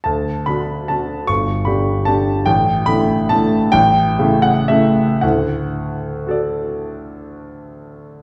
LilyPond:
<<
  \new Staff \with { instrumentName = "Grand piano" } { \time 3/4 \key d \major \tempo 4 = 138 << { a''4 b''4 a''4 | cis'''4 b''4 a''4 | g''4 b''4 a''4 | g''4. fis''8 e''4 |
fis''2.~ | fis''2. | } \\ { r2. | r2. | r2. | r2. |
r2 <fis' a' d''>4~ | <fis' a' d''>2. | } >> }
  \new Staff \with { instrumentName = "Grand piano" } { \time 3/4 \key d \major d,4 <d d' fis'>4 <d d' fis'>4 | g,,4 <d d' g'>4 <d d' g'>4 | a,,4 <d a e'>4 <d a e'>4 | a,,4 <cis a e'>4 <cis a e'>4 |
<d, a,>2.~ | <d, a,>2. | }
>>